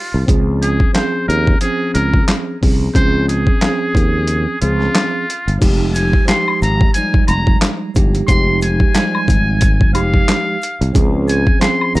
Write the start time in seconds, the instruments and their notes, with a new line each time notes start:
Already playing: muted trumpet F4
0.14 fretless electric bass C2
0.26 fretless electric bass C#2, tine electric piano F3 C4 C#4 G#4, kick, closed hi-hat
0.62 muted trumpet G#4, closed hi-hat
0.80 kick
0.93 tine electric piano F3 C4 C#4 G#4, muted trumpet C5, snare, clap, closed hi-hat
1.28 fretless electric bass D#2, muted trumpet A#4, closed hi-hat
1.47 kick
1.61 tine electric piano F3 C4 C#4 G#4, muted trumpet G#4, closed hi-hat
1.94 fretless electric bass C#2, muted trumpet A#4, closed hi-hat
2.14 kick
2.28 snare, clap, closed hi-hat
2.61 fretless electric bass C2, tine electric piano F3 C4 C#4 G#4, kick, open hi-hat
2.94 fretless electric bass C#2, tine electric piano F3 C4 C#4 G#4, muted trumpet C5, kick, closed hi-hat
3.29 muted trumpet G#4, closed hi-hat
3.47 kick
3.61 tine electric piano F3 C4 C#4 G#4, snare, clap, closed hi-hat
3.95 fretless electric bass D#2, kick, closed hi-hat
4.27 closed hi-hat
4.61 fretless electric bass C#2, tine electric piano F3 C4 C#4 G#4, muted trumpet F4, closed hi-hat
4.81 snare
4.95 snare, clap, closed hi-hat
5.30 closed hi-hat
5.48 fretless electric bass G1, closed hi-hat
5.59 fretless electric bass F1, tine electric piano F3 G#3 D#4 G4, kick, closed hi-hat, crash, shaker
5.94 muted trumpet G#5, closed hi-hat, shaker
6.13 kick
6.25 tine electric piano F3 G#3 D#4 G4, muted trumpet C6, snare, clap, closed hi-hat, shaker
6.48 high woodblock
6.62 fretless electric bass G#1, muted trumpet A#5, closed hi-hat, shaker
6.81 kick
6.94 tine electric piano F3 G#3 D#4, muted trumpet G#5, closed hi-hat, shaker
6.98 tine electric piano G3
7.14 kick
7.27 fretless electric bass F1, muted trumpet A#5, closed hi-hat, high woodblock, shaker
7.47 kick
7.62 snare, clap, closed hi-hat, shaker
7.94 fretless electric bass G1, tine electric piano F3 G#3 D#4 G4, kick, closed hi-hat, shaker
8.15 closed hi-hat
8.28 fretless electric bass F1, tine electric piano F3 G#3 D#4 G4, muted trumpet C6, kick, closed hi-hat, shaker
8.61 muted trumpet G#5, closed hi-hat, shaker
8.80 kick
8.94 tine electric piano F3 G3 G#3 D#4, snare, clap, closed hi-hat, shaker
9.15 high woodblock
9.28 fretless electric bass G#1, kick, closed hi-hat, shaker
9.61 kick, closed hi-hat, shaker
9.81 kick
9.92 fretless electric bass F1, tine electric piano F3 G#3 D#4 G4, muted trumpet F5, closed hi-hat, high woodblock, shaker
10.14 kick
10.28 snare, clap, closed hi-hat, shaker
10.62 closed hi-hat, shaker
10.81 fretless electric bass C2, closed hi-hat
10.93 fretless electric bass C#2, tine electric piano F3 C4 C#4 G#4, kick, closed hi-hat, shaker
11.28 muted trumpet G#5, closed hi-hat, shaker
11.47 kick
11.60 tine electric piano F3 C4 C#4 G#4, muted trumpet C6, snare, clap, closed hi-hat, shaker
11.81 high woodblock
11.95 fretless electric bass D#2, muted trumpet A#5, closed hi-hat, shaker